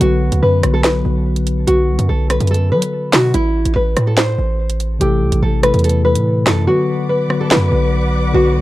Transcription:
0.00 0.31 B1 loud
0.00 0.59 D3 medium
0.00 0.60 F#3 medium
0.00 0.60 B3 medium
0.00 0.40 F#4 loud
0.00 0.61 F#4 medium
0.00 0.61 B4 loud
0.00 closed hi-hat medium
0.32 0.42 D2 loud
0.32 closed hi-hat medium
0.42 0.62 F#2 loud
0.42 0.72 B4 medium
0.61 1.03 B1 loud
0.61 1.02 D3 medium
0.61 1.02 F#3 medium
0.61 1.03 B3 medium
0.61 1.03 F#4 medium
0.61 1.04 B4 medium
0.61 cross-stick medium
0.61 closed hi-hat medium
0.74 0.83 A4 medium
0.84 1.63 B4 medium
0.84 snare loud
0.84 clap medium
0.84 closed hi-hat medium
1.03 1.65 B1 loud
1.03 1.63 D3 medium
1.03 1.64 F#3 medium
1.03 1.64 B3 medium
1.03 1.65 F#4 medium
1.03 1.65 B4 medium
1.36 closed hi-hat medium
1.47 closed hi-hat medium
1.67 1.90 B1 loud
1.67 2.07 F#4 loud
1.67 closed hi-hat medium
1.89 1.98 C2 loud
1.99 2.09 F#2 loud
1.99 closed hi-hat medium
2.09 2.39 B1 loud
2.09 2.27 A4 medium
2.30 2.48 B4 medium
2.30 cross-stick medium
2.30 closed hi-hat medium
2.40 2.73 F#2 loud
2.40 closed hi-hat medium
2.47 2.68 A4 medium
2.47 closed hi-hat medium
2.54 closed hi-hat medium
2.72 2.82 F#3 loud
2.72 3.11 B4 medium
2.82 closed hi-hat medium
3.13 3.33 B2 loud
3.13 3.31 F#4 medium
3.13 snare loud
3.13 clap medium
3.13 open hi-hat medium
3.34 3.64 A1 loud
3.34 3.73 E4 loud
3.34 closed hi-hat medium
3.65 3.75 A1 loud
3.65 closed hi-hat medium
3.76 3.96 A1 loud
3.76 4.05 B4 medium
3.97 4.37 A2 loud
3.97 cross-stick medium
3.97 closed hi-hat medium
4.07 4.16 A4 medium
4.17 4.97 C5 medium
4.17 snare loud
4.17 clap medium
4.17 closed hi-hat medium
4.38 4.98 A1 loud
4.70 closed hi-hat medium
4.80 closed hi-hat medium
4.99 5.23 A1 loud
4.99 5.59 C3 medium
4.99 5.60 E3 medium
4.99 5.60 A3 medium
4.99 5.61 E4 medium
4.99 5.40 G4 medium
4.99 5.61 A4 loud
4.99 closed hi-hat medium
5.22 5.32 C2 loud
5.32 5.42 A1 loud
5.32 closed hi-hat medium
5.42 5.72 A1 loud
5.42 5.60 A4 medium
5.62 6.02 C3 medium
5.62 6.03 E3 medium
5.62 6.03 A3 medium
5.62 6.03 E4 medium
5.62 6.04 A4 medium
5.62 5.81 B4 medium
5.62 cross-stick medium
5.62 closed hi-hat medium
5.74 6.17 E2 loud
5.74 closed hi-hat soft
5.79 closed hi-hat soft
5.84 6.02 A4 medium
5.84 closed hi-hat medium
5.89 closed hi-hat medium
6.03 6.44 C3 medium
6.03 6.44 E3 medium
6.03 6.45 A3 medium
6.03 6.45 E4 medium
6.03 6.46 A4 medium
6.03 6.44 B4 medium
6.15 6.45 A2 loud
6.15 closed hi-hat medium
6.45 6.68 F#2 loud
6.45 6.66 C3 medium
6.45 6.66 E3 medium
6.45 6.67 A3 medium
6.45 6.64 A4 medium
6.45 6.67 A4 medium
6.45 cross-stick medium
6.45 snare loud
6.45 clap medium
6.45 closed hi-hat medium
6.66 7.26 D3 medium
6.66 7.27 F#3 medium
6.66 7.27 B3 medium
6.66 7.07 F#4 loud
6.66 7.27 F#4 medium
6.66 8.61 B4 medium
6.66 7.28 B4 loud
6.66 8.61 D5 medium
6.66 8.61 F#5 medium
6.66 8.61 D6 medium
7.09 7.39 B4 medium
7.28 7.69 D3 medium
7.28 7.69 F#3 medium
7.28 7.70 B3 medium
7.28 7.70 F#4 medium
7.28 7.70 B4 medium
7.28 cross-stick medium
7.41 7.49 A4 medium
7.51 8.30 B4 medium
7.51 snare loud
7.51 clap medium
7.56 7.71 F#2 loud
7.70 8.32 B1 loud
7.70 8.30 D3 medium
7.70 8.31 F#3 medium
7.70 8.31 B3 medium
7.70 8.32 F#4 medium
7.70 8.32 B4 medium
8.32 8.57 B1 loud
8.32 8.61 D3 loud
8.32 8.61 F#3 medium
8.32 8.61 B3 medium
8.32 8.61 F#4 loud
8.32 8.61 F#4 medium
8.32 8.61 B4 loud
8.55 8.61 C2 loud

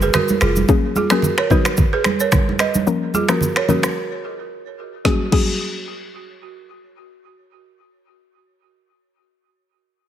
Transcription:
0.00 0.61 F#3 medium
0.00 0.61 B3 medium
0.00 0.61 D#4 medium
0.00 0.61 G#4 loud
0.00 0.11 G#4 medium
0.00 0.11 B4 medium
0.00 shaker medium
0.14 0.25 F#4 medium
0.14 0.25 A#4 medium
0.14 finger snap medium
0.14 cross-stick medium
0.14 high conga medium
0.14 low conga medium
0.14 shaker medium
0.28 high conga medium
0.28 shaker medium
0.41 0.64 F1 loud
0.41 0.52 F4 medium
0.41 0.52 G#4 medium
0.41 finger snap medium
0.41 cross-stick loud
0.41 shaker medium
0.56 high conga medium
0.56 shaker medium
0.69 1.07 F#3 loud
0.69 1.07 A#3 medium
0.69 1.08 C#4 medium
0.69 1.08 G#4 loud
0.69 kick loud
0.69 shaker medium
0.96 1.07 F4 medium
0.96 1.07 G#4 medium
0.96 high conga medium
0.96 shaker medium
1.10 1.31 F#3 medium
1.10 1.31 A#3 medium
1.10 1.31 C#4 medium
1.10 1.20 F#4 medium
1.10 1.31 G#4 medium
1.10 1.20 A#4 medium
1.10 finger snap medium
1.10 cross-stick medium
1.10 shaker medium
1.22 low conga medium
1.22 shaker medium
1.38 1.48 A#4 medium
1.38 1.47 C#5 medium
1.38 finger snap medium
1.38 cross-stick medium
1.50 1.72 F#3 medium
1.50 1.72 B3 medium
1.50 1.72 D#4 medium
1.50 1.62 F#4 medium
1.50 1.61 B4 medium
1.50 1.72 B4 medium
1.50 kick medium
1.50 high conga soft
1.50 low conga medium
1.50 shaker medium
1.65 finger snap medium
1.65 cross-stick medium
1.65 shaker medium
1.77 kick medium
1.77 low conga medium
1.77 shaker medium
1.93 2.02 G#4 medium
1.93 2.01 B4 medium
2.04 finger snap medium
2.04 cross-stick medium
2.04 high conga medium
2.04 shaker medium
2.20 2.29 A#4 medium
2.20 2.29 C#5 medium
2.20 shaker medium
2.32 finger snap medium
2.32 kick loud
2.32 cross-stick medium
2.32 high conga medium
2.32 low conga medium
2.32 shaker medium
2.49 high conga medium
2.59 2.71 B4 medium
2.59 2.70 D#5 medium
2.59 finger snap medium
2.59 cross-stick medium
2.59 shaker medium
2.74 high conga medium
2.74 shaker medium
2.87 3.26 F3 medium
2.87 3.26 A#3 medium
2.87 3.26 C#4 medium
2.87 3.26 A#4 loud
2.87 shaker medium
3.14 3.25 F4 soft
3.14 3.25 G#4 medium
3.14 high conga medium
3.14 shaker medium
3.29 3.49 F3 medium
3.29 3.49 A#3 medium
3.29 3.49 C#4 medium
3.29 3.38 F#4 medium
3.29 3.38 A#4 medium
3.29 3.49 A#4 medium
3.29 finger snap medium
3.29 cross-stick medium
3.29 shaker medium
3.41 low conga medium
3.41 shaker medium
3.56 3.66 A#4 medium
3.56 3.65 C#5 medium
3.56 finger snap medium
3.56 cross-stick medium
3.68 3.90 F3 medium
3.68 3.90 A#3 medium
3.68 3.90 C#4 medium
3.68 3.80 F#4 medium
3.68 3.90 A#4 medium
3.68 3.79 A#4 medium
3.68 high conga soft
3.68 low conga medium
3.68 shaker medium
3.83 finger snap medium
3.83 cross-stick medium
3.83 shaker medium
5.05 5.21 F#3 medium
5.05 5.21 A#3 medium
5.05 5.21 C#4 medium
5.05 5.22 F#4 medium
5.05 5.22 G#4 loud
5.05 kick medium
5.05 snare medium
5.05 high conga medium
5.32 8.35 F#3 medium
5.32 8.35 A#3 medium
5.32 8.35 C#4 medium
5.32 6.65 F#4 medium
5.32 8.36 G#4 loud
5.32 kick loud
5.32 crash medium
5.32 high conga medium

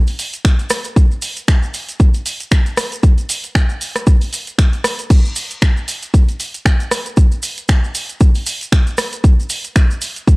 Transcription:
0.07 open hi-hat medium
0.07 maracas soft
0.19 open hi-hat loud
0.19 maracas medium
0.33 closed hi-hat medium
0.33 maracas soft
0.45 finger snap loud
0.45 kick loud
0.45 maracas soft
0.59 closed hi-hat medium
0.59 maracas soft
0.70 cross-stick medium
0.70 open hi-hat loud
0.70 maracas loud
0.84 closed hi-hat medium
0.84 maracas soft
0.96 kick loud
0.96 maracas medium
1.11 maracas soft
1.22 open hi-hat loud
1.22 maracas medium
1.36 closed hi-hat medium
1.36 maracas soft
1.48 finger snap loud
1.48 kick loud
1.48 maracas soft
1.63 maracas soft
1.74 open hi-hat loud
1.74 maracas medium
1.89 closed hi-hat medium
1.89 maracas soft
2.00 kick loud
2.00 maracas medium
2.14 closed hi-hat medium
2.14 maracas soft
2.26 open hi-hat loud
2.26 maracas medium
2.40 closed hi-hat medium
2.40 maracas soft
2.51 finger snap loud
2.51 kick loud
2.51 maracas medium
2.66 closed hi-hat medium
2.66 maracas soft
2.77 cross-stick medium
2.77 open hi-hat loud
2.77 maracas medium
2.92 closed hi-hat medium
2.92 maracas soft
3.03 kick loud
3.03 maracas medium
3.18 closed hi-hat soft
3.18 maracas soft
3.29 open hi-hat loud
3.29 maracas loud
3.44 closed hi-hat medium
3.44 maracas soft
3.55 finger snap loud
3.55 kick loud
3.55 maracas medium
3.69 maracas soft
3.81 open hi-hat loud
3.81 maracas medium
3.96 cross-stick medium
3.96 closed hi-hat medium
3.96 maracas soft
4.07 kick loud
4.07 maracas medium
4.21 open hi-hat medium
4.21 maracas soft
4.33 open hi-hat loud
4.33 maracas loud
4.47 closed hi-hat medium
4.47 maracas soft
4.59 finger snap loud
4.59 kick loud
4.59 maracas medium
4.73 closed hi-hat medium
4.73 maracas soft
4.84 cross-stick medium
4.84 open hi-hat loud
4.84 maracas medium
4.99 closed hi-hat medium
4.99 maracas soft
5.10 kick loud
5.10 crash medium
5.10 maracas medium
5.25 maracas soft
5.36 open hi-hat loud
5.36 maracas loud
5.51 closed hi-hat medium
5.51 maracas soft
5.62 finger snap loud
5.62 kick loud
5.62 maracas medium
5.77 maracas soft
5.88 open hi-hat loud
5.88 maracas loud
6.02 closed hi-hat medium
6.02 maracas soft
6.14 kick loud
6.14 maracas medium
6.28 closed hi-hat medium
6.28 maracas soft
6.40 open hi-hat loud
6.40 maracas medium
6.54 closed hi-hat medium
6.54 maracas soft
6.65 finger snap loud
6.65 kick loud
6.65 maracas soft
6.80 closed hi-hat medium
6.80 maracas soft
6.91 cross-stick medium
6.91 open hi-hat loud
6.91 maracas medium
7.06 closed hi-hat medium
7.06 maracas soft
7.17 kick loud
7.17 maracas medium
7.32 maracas soft
7.42 open hi-hat loud
7.42 maracas medium
7.57 closed hi-hat medium
7.57 maracas soft
7.68 finger snap loud
7.68 kick loud
7.68 maracas medium
7.84 maracas soft
7.95 open hi-hat loud
7.95 maracas medium
8.09 closed hi-hat medium
8.09 maracas soft
8.20 kick loud
8.20 maracas medium
8.35 open hi-hat medium
8.35 maracas soft
8.46 open hi-hat loud
8.46 maracas loud
8.61 closed hi-hat medium
8.61 maracas soft
8.72 finger snap loud
8.72 kick loud
8.72 maracas medium
8.87 closed hi-hat medium
8.87 maracas soft
8.98 cross-stick medium
8.98 open hi-hat loud
8.98 maracas loud
9.13 closed hi-hat medium
9.13 maracas soft
9.24 kick loud
9.24 maracas medium
9.40 maracas soft
9.50 open hi-hat loud
9.50 maracas medium
9.64 closed hi-hat medium
9.64 maracas soft
9.76 finger snap loud
9.76 kick loud
9.76 maracas medium
9.91 maracas soft
10.01 open hi-hat loud
10.01 maracas medium
10.16 closed hi-hat medium
10.16 maracas soft
10.27 kick loud
10.27 maracas medium

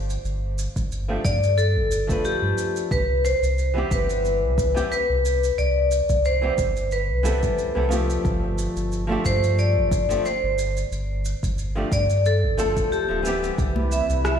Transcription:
0.00 0.18 G1 medium
0.10 shaker soft
0.25 0.68 G1 medium
0.25 shaker soft
0.58 shaker medium
0.76 1.18 G1 medium
0.76 kick medium
0.76 shaker soft
0.92 shaker soft
1.08 1.20 F3 medium
1.08 1.20 A3 medium
1.08 1.20 C4 medium
1.08 1.21 D4 medium
1.08 1.21 G4 medium
1.25 1.77 G2 medium
1.25 1.59 D5 medium
1.25 kick medium
1.25 shaker medium
1.43 shaker soft
1.58 2.21 A4 medium
1.58 shaker soft
1.76 2.18 G1 medium
1.92 shaker medium
2.07 2.88 F3 medium
2.07 2.89 A3 medium
2.07 2.90 C4 medium
2.07 2.90 D4 medium
2.07 kick medium
2.07 shaker soft
2.12 2.91 B4 medium
2.25 2.73 G4 medium
2.25 shaker soft
2.42 2.53 G2 medium
2.58 shaker medium
2.76 shaker soft
2.91 3.35 C2 loud
2.91 3.26 B4 medium
2.91 kick loud
2.91 shaker soft
3.25 3.93 C5 medium
3.25 shaker medium
3.42 3.84 C2 medium
3.42 shaker soft
3.58 shaker soft
3.74 4.71 E3 medium
3.74 4.71 G3 medium
3.74 4.72 B3 medium
3.74 4.72 C4 medium
3.78 4.73 G4 medium
3.91 4.44 G1 medium
3.91 4.90 B4 medium
3.91 kick loud
3.91 shaker medium
4.10 shaker soft
4.25 shaker soft
4.43 4.84 C2 medium
4.58 kick medium
4.58 shaker medium
4.74 4.93 E3 medium
4.74 4.93 G3 medium
4.74 4.94 B3 medium
4.74 4.94 C4 medium
4.74 4.94 G4 medium
4.74 shaker soft
4.92 5.60 B4 medium
4.92 shaker soft
5.09 5.51 C2 medium
5.25 shaker medium
5.44 shaker soft
5.58 6.02 C2 loud
5.58 6.27 D5 medium
5.58 shaker soft
5.91 shaker medium
6.09 6.51 C2 medium
6.09 kick medium
6.09 shaker soft
6.25 6.88 C5 medium
6.25 shaker soft
6.41 6.53 E3 medium
6.41 6.53 G3 medium
6.41 6.54 B3 medium
6.41 6.54 C4 medium
6.41 6.54 G4 medium
6.58 7.11 G1 medium
6.58 kick medium
6.58 shaker medium
6.77 shaker soft
6.92 7.88 B4 medium
6.92 shaker soft
7.09 7.51 C2 medium
7.23 7.71 E3 medium
7.23 7.71 G3 medium
7.23 7.72 B3 medium
7.23 7.72 C4 medium
7.23 7.72 A4 medium
7.23 shaker medium
7.43 kick medium
7.43 shaker soft
7.58 shaker soft
7.75 8.18 C2 medium
7.75 7.87 E3 medium
7.75 7.87 G3 medium
7.75 7.88 B3 medium
7.75 7.88 C4 medium
7.75 7.88 A4 medium
7.89 9.04 F3 medium
7.89 9.05 A3 medium
7.89 9.05 C4 medium
7.89 9.06 D4 medium
7.89 shaker medium
7.93 9.06 G4 medium
8.10 shaker soft
8.25 8.68 G1 loud
8.25 kick loud
8.25 shaker soft
8.58 shaker medium
8.76 9.18 G1 medium
8.76 shaker soft
8.92 shaker soft
9.07 10.04 F3 medium
9.07 10.05 A3 medium
9.07 10.05 C4 medium
9.07 10.06 D4 medium
9.12 10.06 G4 medium
9.25 9.78 G2 loud
9.25 9.56 C5 medium
9.25 kick medium
9.25 shaker medium
9.44 shaker soft
9.59 10.27 D5 loud
9.59 shaker soft
9.76 10.18 G1 medium
9.91 kick medium
9.91 shaker medium
10.09 10.27 F3 medium
10.09 10.27 A3 medium
10.09 10.28 C4 medium
10.09 10.28 D4 medium
10.09 10.28 G4 medium
10.09 shaker soft
10.25 10.73 C5 medium
10.25 shaker soft
10.43 10.85 G1 loud
10.59 shaker medium
10.77 shaker soft
10.91 11.35 G1 loud
10.91 shaker soft
11.25 shaker medium
11.43 11.85 G1 medium
11.43 kick medium
11.43 shaker soft
11.58 shaker soft
11.75 11.87 F3 medium
11.75 11.87 A3 medium
11.75 11.87 C4 medium
11.75 11.88 D4 medium
11.75 11.88 G4 medium
11.92 12.44 G2 medium
11.92 12.26 D5 loud
11.92 kick medium
11.92 shaker medium
12.10 shaker soft
12.25 12.94 A4 medium
12.25 shaker soft
12.43 12.85 G1 medium
12.57 13.05 F3 medium
12.57 13.05 A3 medium
12.57 13.05 C4 medium
12.57 13.06 D4 medium
12.57 13.06 A4 medium
12.57 shaker medium
12.77 kick medium
12.77 shaker soft
12.92 13.40 G4 medium
12.92 shaker soft
13.08 13.51 D1 medium
13.08 13.21 F3 medium
13.08 13.21 A3 medium
13.08 13.21 C4 medium
13.08 13.21 D4 medium
13.08 13.22 A4 medium
13.23 14.38 E3 medium
13.23 14.38 G3 medium
13.23 14.39 B3 medium
13.23 14.39 C4 medium
13.23 shaker medium
13.27 14.39 G4 medium
13.44 shaker soft
13.58 14.02 C2 medium
13.58 14.39 C3 medium
13.58 14.39 E4 medium
13.58 14.39 B4 medium
13.58 kick loud
13.58 shaker soft
13.76 high conga medium
13.92 14.23 E5 medium
13.92 shaker medium
14.10 14.39 C2 medium
14.10 shaker soft
14.25 14.39 E5 medium
14.25 cross-stick loud
14.25 shaker soft

